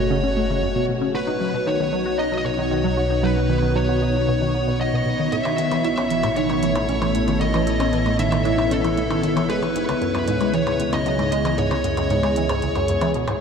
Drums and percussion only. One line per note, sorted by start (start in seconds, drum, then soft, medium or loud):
5.32 closed hi-hat medium
5.45 closed hi-hat soft
5.45 percussion blips medium
5.58 closed hi-hat medium
5.72 closed hi-hat medium
5.72 percussion blips soft
5.85 closed hi-hat medium
5.98 closed hi-hat soft
5.98 percussion blips medium
6.10 closed hi-hat medium
6.23 closed hi-hat medium
6.23 percussion blips medium
6.36 closed hi-hat medium
6.50 closed hi-hat soft
6.50 percussion blips soft
6.63 closed hi-hat medium
6.75 closed hi-hat medium
6.75 percussion blips medium
6.89 closed hi-hat medium
7.02 closed hi-hat soft
7.02 percussion blips medium
7.15 closed hi-hat medium
7.28 closed hi-hat soft
7.28 percussion blips soft
7.41 closed hi-hat soft
7.54 closed hi-hat soft
7.54 percussion blips medium
7.67 closed hi-hat medium
7.80 closed hi-hat soft
7.80 percussion blips medium
7.93 closed hi-hat soft
8.06 closed hi-hat soft
8.06 percussion blips soft
8.19 closed hi-hat medium
8.32 closed hi-hat soft
8.32 percussion blips medium
8.45 closed hi-hat soft
8.58 closed hi-hat soft
8.58 percussion blips medium
8.71 closed hi-hat medium
8.85 closed hi-hat soft
8.85 percussion blips soft
8.97 closed hi-hat soft
9.10 closed hi-hat soft
9.10 percussion blips medium
9.23 closed hi-hat medium
9.37 closed hi-hat soft
9.37 percussion blips medium
9.50 closed hi-hat soft
9.63 closed hi-hat soft
9.63 percussion blips soft
9.76 closed hi-hat medium
9.89 closed hi-hat soft
9.89 percussion blips medium
10.02 closed hi-hat soft
10.15 closed hi-hat soft
10.15 percussion blips medium
10.28 closed hi-hat medium
10.41 closed hi-hat soft
10.41 percussion blips soft
10.54 closed hi-hat soft
10.67 closed hi-hat soft
10.67 percussion blips medium
10.80 closed hi-hat medium
10.93 closed hi-hat medium
10.93 percussion blips medium
11.06 closed hi-hat medium
11.19 closed hi-hat soft
11.19 percussion blips soft
11.32 closed hi-hat medium
11.45 closed hi-hat soft
11.45 percussion blips medium
11.58 closed hi-hat soft
11.71 closed hi-hat soft
11.71 percussion blips medium
11.84 closed hi-hat medium
11.97 closed hi-hat soft
11.97 percussion blips soft
12.10 closed hi-hat soft
12.23 closed hi-hat soft
12.23 percussion blips medium
12.36 closed hi-hat medium
12.49 closed hi-hat medium
12.49 percussion blips medium
12.62 closed hi-hat medium
12.75 closed hi-hat soft
12.75 percussion blips soft
12.88 closed hi-hat medium
13.01 closed hi-hat soft
13.01 percussion blips medium
13.14 closed hi-hat medium
13.28 closed hi-hat soft
13.28 percussion blips medium